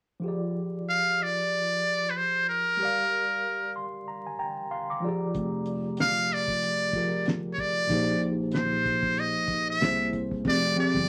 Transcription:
0.20 2.73 F3 medium
0.20 2.74 F4 medium
0.20 2.75 G4 medium
0.26 2.76 G#4 soft
0.26 2.77 D5 medium
0.89 1.24 F5 medium
1.23 2.12 D5 medium
2.10 2.18 B4 soft
2.17 2.48 C5 medium
2.49 3.72 A#4 medium
2.77 4.97 G3 medium
2.77 4.98 G4 soft
2.77 4.99 A#4 soft
2.83 5.00 D5 soft
2.83 4.70 F5 medium
3.76 4.05 C6 medium
4.08 4.25 A#5 medium
4.27 4.38 G#5 medium
4.39 4.70 G5 medium
4.39 4.69 A#5 medium
4.71 5.01 F5 medium
4.71 4.89 C6 medium
4.90 5.20 A#5 soft
4.90 5.20 D6 medium
5.00 6.89 F3 medium
5.00 6.90 F4 medium
5.04 6.91 G4 medium
5.04 6.92 G#4 medium
5.04 5.07 D5 medium
5.04 6.93 D5 medium
5.34 7.86 F1 medium
5.34 kick medium
5.34 closed hi-hat medium
5.66 closed hi-hat soft
5.97 6.35 F5 medium
5.97 snare medium
5.97 closed hi-hat medium
6.32 7.27 D5 medium
6.32 closed hi-hat medium
6.48 kick medium
6.63 closed hi-hat medium
6.93 7.87 F3 soft
6.93 7.90 F4 soft
6.93 7.90 G4 soft
6.93 7.91 G#4 soft
6.93 kick medium
6.93 closed hi-hat medium
6.97 7.91 A#4 soft
7.26 snare medium
7.26 closed hi-hat medium
7.54 7.61 C#5 medium
7.58 8.23 D5 medium
7.58 kick medium
7.58 closed hi-hat medium
7.86 9.76 A#2 medium
7.86 9.77 F3 soft
7.86 9.77 D#4 soft
7.86 kick medium
7.86 closed hi-hat medium
7.90 9.78 A#1 medium
7.90 9.78 G4 soft
7.90 9.79 G#4 soft
7.90 9.80 C5 medium
8.20 closed hi-hat soft
8.51 9.21 C5 medium
8.51 snare medium
8.51 closed hi-hat medium
8.85 kick medium
8.85 closed hi-hat medium
9.03 kick medium
9.17 9.69 D#5 medium
9.17 closed hi-hat medium
9.48 kick medium
9.48 closed hi-hat medium
9.70 10.11 E5 medium
9.80 10.42 C2 medium
9.80 10.44 C3 soft
9.80 10.45 A#3 soft
9.80 10.46 E4 soft
9.80 10.46 G#4 soft
9.80 snare medium
9.80 closed hi-hat medium
9.84 10.47 C5 medium
10.13 kick medium
10.13 closed hi-hat medium
10.31 kick medium
10.44 10.74 F1 medium
10.44 10.71 F3 medium
10.44 10.71 C4 medium
10.44 10.72 G4 medium
10.44 10.72 G#4 medium
10.44 kick loud
10.44 crash medium
10.48 10.73 D5 medium
10.48 10.77 D5 loud
10.76 11.09 F3 medium
10.76 11.09 C4 medium
10.76 11.09 G4 medium
10.76 11.09 G#4 medium
10.76 closed hi-hat soft
10.80 11.09 D5 medium
10.94 11.09 G1 medium
10.94 kick medium

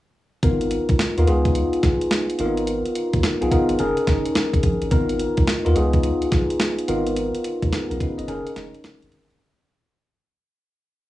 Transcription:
0.43 0.79 G#1 loud
0.43 0.98 B3 medium
0.43 0.99 D#4 medium
0.43 0.99 F4 medium
0.43 0.99 A#4 medium
0.43 kick loud
0.43 closed hi-hat medium
0.61 closed hi-hat soft
0.71 closed hi-hat medium
0.89 0.97 B1 medium
0.89 kick medium
0.89 closed hi-hat medium
0.99 snare loud
0.99 closed hi-hat medium
1.18 1.25 D#2 medium
1.18 1.25 B3 medium
1.18 1.25 D#4 medium
1.18 1.25 F4 medium
1.18 1.26 A#4 medium
1.18 closed hi-hat soft
1.27 1.63 C#2 medium
1.27 2.18 B3 medium
1.27 2.19 D#4 medium
1.27 2.19 F4 medium
1.27 2.19 G#4 medium
1.27 closed hi-hat medium
1.45 kick medium
1.45 closed hi-hat soft
1.55 closed hi-hat medium
1.73 1.78 B1 soft
1.73 closed hi-hat soft
1.83 1.97 B1 medium
1.83 kick loud
1.83 snare medium
1.83 closed hi-hat medium
2.01 closed hi-hat medium
2.11 snare loud
2.11 closed hi-hat medium
2.30 closed hi-hat medium
2.39 2.83 G#1 loud
2.39 2.48 A#3 medium
2.39 3.20 D#4 medium
2.39 3.20 F4 medium
2.39 3.20 A#4 loud
2.39 closed hi-hat medium
2.46 3.23 B3 medium
2.57 closed hi-hat soft
2.67 closed hi-hat medium
2.86 closed hi-hat soft
2.95 closed hi-hat medium
3.13 3.21 D#2 medium
3.13 kick loud
3.13 closed hi-hat medium
3.23 snare loud
3.23 closed hi-hat medium
3.41 3.50 B1 medium
3.41 3.49 B3 medium
3.41 3.49 D#4 medium
3.41 3.49 F4 medium
3.41 3.50 G#4 medium
3.41 closed hi-hat soft
3.51 3.79 B3 medium
3.51 3.78 D#4 medium
3.51 3.79 F4 medium
3.51 3.79 A#4 medium
3.51 kick medium
3.51 closed hi-hat medium
3.69 3.77 G#1 medium
3.69 closed hi-hat medium
3.79 3.93 F#1 loud
3.79 4.71 C#4 medium
3.79 4.71 D#4 medium
3.79 4.71 G#4 medium
3.79 4.71 A#4 medium
3.79 closed hi-hat medium
3.97 4.02 F#1 medium
3.97 closed hi-hat soft
4.07 4.21 F#1 medium
4.07 kick medium
4.07 snare medium
4.07 closed hi-hat medium
4.26 closed hi-hat medium
4.35 snare loud
4.35 closed hi-hat medium
4.53 4.61 G#1 medium
4.53 kick loud
4.53 closed hi-hat medium
4.63 4.77 A#1 loud
4.63 kick medium
4.63 closed hi-hat medium
4.82 4.89 A1 medium
4.82 closed hi-hat soft
4.91 5.27 G#1 loud
4.91 5.47 B3 medium
4.91 5.47 D#4 medium
4.91 5.47 F4 medium
4.91 5.47 A#4 medium
4.91 kick loud
4.91 closed hi-hat medium
5.09 closed hi-hat medium
5.20 closed hi-hat medium
5.37 5.45 B1 loud
5.37 kick loud
5.37 closed hi-hat medium
5.48 snare loud
5.48 closed hi-hat medium
5.65 5.74 D#2 medium
5.65 5.73 B3 medium
5.65 5.73 D#4 medium
5.65 5.74 F4 medium
5.65 5.74 A#4 medium
5.65 closed hi-hat soft
5.75 6.11 C#2 medium
5.75 6.67 B3 medium
5.75 6.67 D#4 medium
5.75 6.67 F4 medium
5.75 6.68 G#4 loud
5.75 closed hi-hat medium
5.93 kick medium
5.93 closed hi-hat soft
6.03 closed hi-hat medium
6.22 6.26 B1 soft
6.22 closed hi-hat soft
6.32 6.46 B1 medium
6.32 kick medium
6.32 snare medium
6.32 closed hi-hat medium
6.50 closed hi-hat medium
6.60 snare loud
6.60 closed hi-hat medium
6.79 closed hi-hat medium
6.88 7.32 G#1 loud
6.88 7.68 B3 medium
6.88 7.68 D#4 medium
6.88 7.68 F4 medium
6.88 7.68 A#4 loud
6.88 closed hi-hat medium
7.07 closed hi-hat medium
7.16 closed hi-hat medium
7.35 closed hi-hat soft
7.44 closed hi-hat medium
7.62 7.70 D#2 medium
7.62 kick loud
7.62 closed hi-hat soft
7.73 7.90 B3 medium
7.73 7.90 G#4 medium
7.73 snare loud
7.73 closed hi-hat medium
7.90 7.98 B1 medium
7.90 8.00 C#4 medium
7.90 8.00 A#4 medium
7.90 closed hi-hat soft
8.00 8.18 D#4 medium
8.00 8.18 B4 medium
8.00 kick medium
8.00 closed hi-hat medium
8.18 8.26 G#1 medium
8.18 8.45 D#5 medium
8.18 closed hi-hat medium
8.28 8.42 F#1 loud
8.28 9.19 C#4 medium
8.28 9.19 D#4 medium
8.28 9.20 G#4 medium
8.28 9.20 A#4 medium
8.28 closed hi-hat medium
8.47 8.50 F#1 medium
8.47 closed hi-hat soft
8.56 8.70 F#1 medium
8.56 snare medium
8.56 closed hi-hat medium
8.75 closed hi-hat medium
8.84 snare loud
8.84 closed hi-hat medium
9.02 9.10 G#1 medium
9.02 closed hi-hat medium
9.12 9.26 G#1 medium
9.12 closed hi-hat medium
9.30 9.38 G1 loud
9.30 closed hi-hat medium

